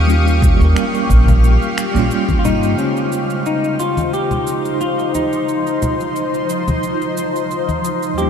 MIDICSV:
0, 0, Header, 1, 6, 480
1, 0, Start_track
1, 0, Tempo, 674157
1, 62, Time_signature, 4, 2, 24, 8
1, 5909, End_track
2, 0, Start_track
2, 0, Title_t, "Ambient pad"
2, 0, Program_c, 0, 92
2, 0, Note_on_c, 0, 67, 72
2, 0, Note_on_c, 0, 77, 68
2, 0, Note_on_c, 0, 85, 64
2, 58, Note_on_c, 0, 89, 77
2, 1952, Note_off_c, 0, 85, 0
2, 1953, Note_off_c, 0, 67, 0
2, 1953, Note_off_c, 0, 77, 0
2, 1961, Note_off_c, 0, 89, 0
2, 1974, Note_on_c, 0, 53, 71
2, 1975, Note_on_c, 0, 72, 78
2, 1976, Note_on_c, 0, 63, 66
2, 5790, Note_off_c, 0, 72, 0
2, 5909, Note_off_c, 0, 53, 0
2, 5909, Note_off_c, 0, 63, 0
2, 5909, End_track
3, 0, Start_track
3, 0, Title_t, "Clean electric guitar"
3, 0, Program_c, 1, 27
3, 0, Note_on_c, 1, 61, 80
3, 1479, Note_off_c, 1, 61, 0
3, 1702, Note_on_c, 1, 65, 61
3, 1745, Note_off_c, 1, 65, 0
3, 1745, Note_on_c, 1, 63, 89
3, 1981, Note_off_c, 1, 63, 0
3, 1984, Note_on_c, 1, 61, 70
3, 2463, Note_off_c, 1, 61, 0
3, 2466, Note_on_c, 1, 63, 80
3, 2703, Note_on_c, 1, 65, 85
3, 2711, Note_off_c, 1, 63, 0
3, 2941, Note_off_c, 1, 65, 0
3, 2944, Note_on_c, 1, 67, 83
3, 3420, Note_off_c, 1, 67, 0
3, 3423, Note_on_c, 1, 65, 74
3, 3646, Note_off_c, 1, 65, 0
3, 3667, Note_on_c, 1, 63, 77
3, 4596, Note_off_c, 1, 63, 0
3, 5823, Note_on_c, 1, 67, 85
3, 5909, Note_off_c, 1, 67, 0
3, 5909, End_track
4, 0, Start_track
4, 0, Title_t, "Tine electric piano"
4, 0, Program_c, 2, 4
4, 0, Control_c, 2, 64, 127
4, 49, Note_on_c, 2, 55, 72
4, 58, Note_on_c, 2, 58, 65
4, 67, Note_on_c, 2, 61, 64
4, 76, Note_on_c, 2, 65, 82
4, 393, Note_off_c, 2, 55, 0
4, 398, Note_off_c, 2, 58, 0
4, 402, Note_off_c, 2, 61, 0
4, 406, Note_on_c, 2, 55, 83
4, 407, Note_off_c, 2, 65, 0
4, 425, Note_on_c, 2, 58, 75
4, 442, Note_on_c, 2, 61, 77
4, 460, Note_on_c, 2, 70, 90
4, 1353, Note_off_c, 2, 55, 0
4, 1361, Note_on_c, 2, 55, 84
4, 1362, Note_off_c, 2, 58, 0
4, 1371, Note_off_c, 2, 61, 0
4, 1380, Note_off_c, 2, 70, 0
4, 1381, Note_on_c, 2, 58, 81
4, 1397, Note_on_c, 2, 61, 83
4, 1418, Note_on_c, 2, 65, 99
4, 1941, Note_off_c, 2, 55, 0
4, 1950, Note_on_c, 2, 49, 63
4, 1951, Note_off_c, 2, 58, 0
4, 1959, Note_off_c, 2, 61, 0
4, 1964, Note_on_c, 2, 56, 57
4, 1969, Note_off_c, 2, 65, 0
4, 1978, Note_on_c, 2, 72, 61
4, 1992, Control_c, 2, 64, 0
4, 1993, Note_on_c, 2, 63, 59
4, 2007, Note_on_c, 2, 65, 70
4, 2120, Control_c, 2, 64, 127
4, 5779, Note_off_c, 2, 49, 0
4, 5786, Note_off_c, 2, 56, 0
4, 5793, Note_off_c, 2, 72, 0
4, 5795, Note_on_c, 2, 39, 69
4, 5801, Note_off_c, 2, 63, 0
4, 5808, Note_off_c, 2, 65, 0
4, 5809, Note_on_c, 2, 55, 64
4, 5824, Note_on_c, 2, 58, 64
4, 5832, Control_c, 2, 64, 0
4, 5839, Note_on_c, 2, 61, 61
4, 5852, Note_on_c, 2, 65, 71
4, 5909, Note_off_c, 2, 39, 0
4, 5909, Note_off_c, 2, 55, 0
4, 5909, Note_off_c, 2, 58, 0
4, 5909, Note_off_c, 2, 61, 0
4, 5909, Note_off_c, 2, 65, 0
4, 5909, End_track
5, 0, Start_track
5, 0, Title_t, "Upright bass"
5, 0, Program_c, 3, 32
5, 0, Note_on_c, 3, 39, 101
5, 387, Note_off_c, 3, 39, 0
5, 428, Note_on_c, 3, 39, 91
5, 519, Note_off_c, 3, 39, 0
5, 781, Note_on_c, 3, 34, 100
5, 1109, Note_off_c, 3, 34, 0
5, 1387, Note_on_c, 3, 34, 98
5, 1478, Note_off_c, 3, 34, 0
5, 1738, Note_on_c, 3, 43, 80
5, 1935, Note_off_c, 3, 43, 0
5, 5909, End_track
6, 0, Start_track
6, 0, Title_t, "Drums"
6, 69, Note_on_c, 9, 69, 41
6, 140, Note_off_c, 9, 69, 0
6, 197, Note_on_c, 9, 69, 21
6, 268, Note_off_c, 9, 69, 0
6, 301, Note_on_c, 9, 64, 80
6, 302, Note_on_c, 9, 36, 99
6, 310, Note_on_c, 9, 69, 71
6, 372, Note_off_c, 9, 64, 0
6, 373, Note_off_c, 9, 36, 0
6, 381, Note_off_c, 9, 69, 0
6, 437, Note_on_c, 9, 69, 31
6, 508, Note_off_c, 9, 69, 0
6, 545, Note_on_c, 9, 26, 80
6, 547, Note_on_c, 9, 69, 43
6, 616, Note_off_c, 9, 26, 0
6, 618, Note_off_c, 9, 69, 0
6, 674, Note_on_c, 9, 69, 21
6, 745, Note_off_c, 9, 69, 0
6, 782, Note_on_c, 9, 36, 99
6, 786, Note_on_c, 9, 69, 75
6, 853, Note_off_c, 9, 36, 0
6, 857, Note_off_c, 9, 69, 0
6, 913, Note_on_c, 9, 64, 80
6, 914, Note_on_c, 9, 63, 77
6, 916, Note_on_c, 9, 69, 30
6, 984, Note_off_c, 9, 64, 0
6, 985, Note_off_c, 9, 63, 0
6, 988, Note_off_c, 9, 69, 0
6, 1026, Note_on_c, 9, 69, 44
6, 1097, Note_off_c, 9, 69, 0
6, 1156, Note_on_c, 9, 69, 20
6, 1227, Note_off_c, 9, 69, 0
6, 1266, Note_on_c, 9, 26, 79
6, 1268, Note_on_c, 9, 69, 75
6, 1337, Note_off_c, 9, 26, 0
6, 1339, Note_off_c, 9, 69, 0
6, 1396, Note_on_c, 9, 69, 27
6, 1467, Note_off_c, 9, 69, 0
6, 1503, Note_on_c, 9, 69, 40
6, 1574, Note_off_c, 9, 69, 0
6, 1628, Note_on_c, 9, 63, 76
6, 1630, Note_on_c, 9, 36, 58
6, 1632, Note_on_c, 9, 69, 21
6, 1699, Note_off_c, 9, 63, 0
6, 1702, Note_off_c, 9, 36, 0
6, 1704, Note_off_c, 9, 69, 0
6, 1743, Note_on_c, 9, 69, 73
6, 1745, Note_on_c, 9, 64, 74
6, 1814, Note_off_c, 9, 69, 0
6, 1816, Note_off_c, 9, 64, 0
6, 1874, Note_on_c, 9, 69, 31
6, 1945, Note_off_c, 9, 69, 0
6, 1983, Note_on_c, 9, 69, 36
6, 2054, Note_off_c, 9, 69, 0
6, 2113, Note_on_c, 9, 69, 19
6, 2184, Note_off_c, 9, 69, 0
6, 2223, Note_on_c, 9, 69, 61
6, 2294, Note_off_c, 9, 69, 0
6, 2351, Note_on_c, 9, 69, 27
6, 2422, Note_off_c, 9, 69, 0
6, 2463, Note_on_c, 9, 69, 39
6, 2534, Note_off_c, 9, 69, 0
6, 2593, Note_on_c, 9, 69, 18
6, 2664, Note_off_c, 9, 69, 0
6, 2702, Note_on_c, 9, 69, 64
6, 2773, Note_off_c, 9, 69, 0
6, 2828, Note_on_c, 9, 63, 81
6, 2832, Note_on_c, 9, 69, 27
6, 2899, Note_off_c, 9, 63, 0
6, 2903, Note_off_c, 9, 69, 0
6, 2944, Note_on_c, 9, 69, 39
6, 3015, Note_off_c, 9, 69, 0
6, 3069, Note_on_c, 9, 64, 65
6, 3071, Note_on_c, 9, 69, 18
6, 3140, Note_off_c, 9, 64, 0
6, 3142, Note_off_c, 9, 69, 0
6, 3183, Note_on_c, 9, 69, 67
6, 3254, Note_off_c, 9, 69, 0
6, 3314, Note_on_c, 9, 69, 26
6, 3385, Note_off_c, 9, 69, 0
6, 3424, Note_on_c, 9, 69, 38
6, 3495, Note_off_c, 9, 69, 0
6, 3554, Note_on_c, 9, 69, 18
6, 3625, Note_off_c, 9, 69, 0
6, 3665, Note_on_c, 9, 69, 67
6, 3666, Note_on_c, 9, 63, 45
6, 3736, Note_off_c, 9, 69, 0
6, 3737, Note_off_c, 9, 63, 0
6, 3794, Note_on_c, 9, 69, 29
6, 3865, Note_off_c, 9, 69, 0
6, 3906, Note_on_c, 9, 69, 38
6, 3977, Note_off_c, 9, 69, 0
6, 4036, Note_on_c, 9, 69, 21
6, 4107, Note_off_c, 9, 69, 0
6, 4146, Note_on_c, 9, 69, 66
6, 4147, Note_on_c, 9, 64, 74
6, 4217, Note_off_c, 9, 69, 0
6, 4218, Note_off_c, 9, 64, 0
6, 4275, Note_on_c, 9, 69, 29
6, 4346, Note_off_c, 9, 69, 0
6, 4386, Note_on_c, 9, 69, 43
6, 4457, Note_off_c, 9, 69, 0
6, 4516, Note_on_c, 9, 69, 20
6, 4587, Note_off_c, 9, 69, 0
6, 4624, Note_on_c, 9, 69, 67
6, 4695, Note_off_c, 9, 69, 0
6, 4753, Note_on_c, 9, 64, 65
6, 4756, Note_on_c, 9, 63, 72
6, 4756, Note_on_c, 9, 69, 27
6, 4825, Note_off_c, 9, 64, 0
6, 4827, Note_off_c, 9, 69, 0
6, 4828, Note_off_c, 9, 63, 0
6, 4865, Note_on_c, 9, 69, 39
6, 4936, Note_off_c, 9, 69, 0
6, 4996, Note_on_c, 9, 69, 19
6, 5068, Note_off_c, 9, 69, 0
6, 5108, Note_on_c, 9, 69, 71
6, 5179, Note_off_c, 9, 69, 0
6, 5240, Note_on_c, 9, 69, 27
6, 5311, Note_off_c, 9, 69, 0
6, 5347, Note_on_c, 9, 69, 39
6, 5418, Note_off_c, 9, 69, 0
6, 5473, Note_on_c, 9, 63, 78
6, 5476, Note_on_c, 9, 69, 19
6, 5544, Note_off_c, 9, 63, 0
6, 5547, Note_off_c, 9, 69, 0
6, 5586, Note_on_c, 9, 69, 68
6, 5658, Note_off_c, 9, 69, 0
6, 5715, Note_on_c, 9, 69, 31
6, 5786, Note_off_c, 9, 69, 0
6, 5826, Note_on_c, 9, 69, 38
6, 5897, Note_off_c, 9, 69, 0
6, 5909, End_track
0, 0, End_of_file